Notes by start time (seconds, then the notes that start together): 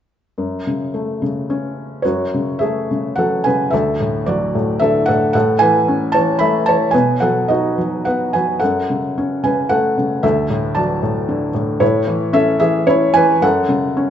0.38 F#2
0.67 C#3
0.94 A3
1.22 C#3
1.50 C#4
2.02 F#2 F#4 C#5
2.34 C#3
2.59 A3 G#4 E5
2.91 C#3
3.16 F#3 A4 F#5
3.44 C#3 B4 G#5
3.70 D2 A4 E5
4.00 A2
4.26 F#3 F#4 D5
4.55 A2
4.79 D3 A4 E5
5.06 A2 A4 F#5
5.33 A2 A4 F#5
5.59 E3 B4 G#5
5.88 C#4
6.12 E3 C#5 A5
6.39 A3 E5 B5
6.66 E3 C#5 A5
6.91 B2 B4 G#5
7.20 F#3 A4 F#5
7.48 D#4 F#4 D#5
7.78 F#3
8.05 B3 B4 F#5
8.33 F#3 B4 G#5
8.60 F#2 A4 F#5
8.90 C#3
9.18 C#4
9.44 C#3 B4 G#5
9.69 A3 A4 F#5
9.98 C#3
10.23 D2 A4 E5
10.50 A2
10.75 F#3 D5 A5
11.03 A2
11.29 D3
11.54 A2
11.80 A2 E4 C#5
12.07 E3
12.33 C#4 A4 E5
12.60 E3 G#4 E5
12.86 C#4 E4 C#5
13.14 E3 B4 G#5
13.42 F#2 A4 F#5
13.69 C#3
13.97 C#4